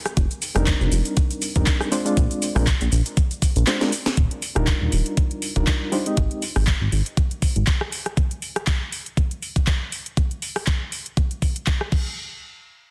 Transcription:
0.06 cross-stick, closed hi-hat, cabasa
0.17 analog synth bass F1, kick, closed hi-hat, cabasa
0.31 closed hi-hat, cabasa
0.42 open hi-hat, cabasa
0.55 analog synth bass F1, reed electric piano G3 C4 D4 D#4 A#4, cross-stick, closed hi-hat, cabasa
0.66 kick, clap, closed hi-hat, cabasa
0.81 analog synth bass F1, cabasa
0.92 analog synth bass F1, open hi-hat, cabasa
1.05 closed hi-hat, cabasa
1.17 kick, closed hi-hat, cabasa
1.31 closed hi-hat, cabasa
1.42 open hi-hat, cabasa
1.55 analog synth bass F1, reed electric piano G3 C4 D4 D#4 A#4, kick, closed hi-hat, cabasa
1.66 kick, clap, closed hi-hat, cabasa
1.81 cross-stick, cabasa
1.91 reed electric piano G#3 C4 D4 F4 C5, open hi-hat, cabasa
2.05 reed electric piano G#3 C4 D4 F4 D5, closed hi-hat, cabasa
2.17 analog synth bass A#1, kick, closed hi-hat, cabasa
2.31 closed hi-hat, cabasa
2.42 open hi-hat, cabasa
2.55 analog synth bass A#1, reed electric piano G#3 C4 D4 F4 A#4, cross-stick, open hi-hat, cabasa
2.67 kick, clap, closed hi-hat, cabasa
2.81 analog synth bass A#1, closed hi-hat, cabasa
2.92 analog synth bass A#1, open hi-hat, cabasa
3.06 closed hi-hat, cabasa
3.17 kick, closed hi-hat, cabasa
3.31 closed hi-hat, cabasa
3.42 kick, open hi-hat, cabasa
3.56 analog synth bass A#1, closed hi-hat, cabasa
3.67 reed electric piano G#3 C4 D4 F4 C5, snare, clap, closed hi-hat, cabasa
3.81 reed electric piano G#3 C4 D4 F4 A#4, snare, closed hi-hat, cabasa
3.92 open hi-hat, cabasa
4.06 snare, closed hi-hat, cabasa
4.17 analog synth bass D#1, kick, closed hi-hat
4.31 closed hi-hat
4.42 open hi-hat
4.55 analog synth bass D#1, reed electric piano G3 D4 D#4 F4 A#4, cross-stick, closed hi-hat
4.67 kick, clap, closed hi-hat
4.81 analog synth bass D#1
4.92 analog synth bass D#1, open hi-hat
5.06 closed hi-hat
5.17 kick, closed hi-hat
5.31 closed hi-hat
5.42 open hi-hat
5.56 analog synth bass D#1, reed electric piano G3 D4 D#4 F4 A#4, kick, closed hi-hat
5.67 kick, clap, closed hi-hat
5.92 reed electric piano G3 D4 D#4 F4 C5, open hi-hat
6.06 reed electric piano G#3 C4 D#4 G4 D#5, closed hi-hat
6.17 analog synth bass G#1, kick, closed hi-hat
6.31 closed hi-hat
6.42 open hi-hat
6.56 analog synth bass G#1, cross-stick, open hi-hat
6.67 kick, clap, closed hi-hat
6.81 analog synth bass G#1
6.92 analog synth bass G#1, open hi-hat
7.06 closed hi-hat
7.17 kick, closed hi-hat
7.31 closed hi-hat
7.42 kick, open hi-hat
7.56 analog synth bass G#1, closed hi-hat
7.67 kick, clap, closed hi-hat
7.81 cross-stick
7.92 open hi-hat
8.06 cross-stick, closed hi-hat
8.17 kick, closed hi-hat
8.31 closed hi-hat
8.42 open hi-hat
8.56 cross-stick, closed hi-hat
8.67 kick, clap, closed hi-hat
8.92 open hi-hat
9.06 closed hi-hat
9.17 kick, closed hi-hat
9.31 closed hi-hat
9.42 open hi-hat
9.56 kick, closed hi-hat
9.67 kick, clap, closed hi-hat
9.92 open hi-hat
10.06 closed hi-hat
10.17 kick, closed hi-hat
10.31 closed hi-hat
10.42 open hi-hat
10.56 cross-stick, open hi-hat
10.67 kick, clap, closed hi-hat
10.92 open hi-hat
11.06 closed hi-hat
11.17 kick, closed hi-hat
11.31 closed hi-hat
11.42 kick, open hi-hat
11.56 closed hi-hat
11.67 kick, clap, closed hi-hat
11.81 cross-stick
11.92 kick, crash

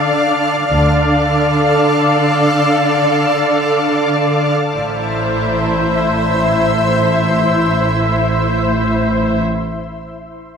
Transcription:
Already playing: cello section D3, viola section D4 D5, ambient pad A4 D5 F5, violin section F5 F6 A6 C7
0.71 double bass section D2, cello section D3, viola section D4 D5, ambient pad A4 D5 F5, violin section F5
4.75 double bass section A1, cello section A2, viola section E4 C5, ambient pad E4 C5 E5, violin section E5 A5 A#5

